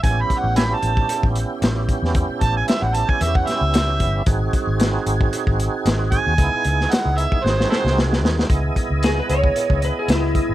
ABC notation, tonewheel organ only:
X:1
M:4/4
L:1/8
Q:"Swing 16ths" 1/4=113
K:C#m
V:1 name="Tonewheel organ"
[B,CE=G]8- | [B,CE=G]8 | [^B,DFG]8 | [B,DEG]4 [^B,DFG]4 |
[B,EGd]8 |]